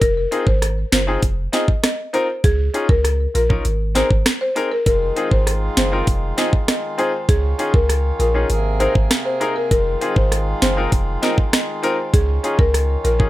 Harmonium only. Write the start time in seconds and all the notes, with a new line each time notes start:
4.86 D#3 G#3 F4
7.29 D#3 C#4
8.50 C3 A#3 G#4
9.71 D#3 G#3 F4
12.14 C#4